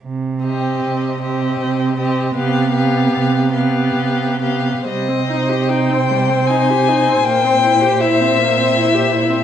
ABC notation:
X:1
M:3/4
L:1/16
Q:1/4=78
K:Cm
V:1 name="Violin"
z2 e4 e4 e2 | f2 f4 f4 f2 | e4 g4 a4 | g4 =e8 |]
V:2 name="Violin"
z2 G4 G4 G2 | G2 G4 G4 G2 | c12- | c12 |]
V:3 name="Viola"
z2 C4 C4 C2 | =B,2 B,4 B,4 B,2 | G, C E G E C G, C E G E C | B, C =E G E C B, C E G E C |]
V:4 name="Cello" clef=bass
C,4 C,4 C,4 | C,4 C,4 C,4 | C,12 | B,,12 |]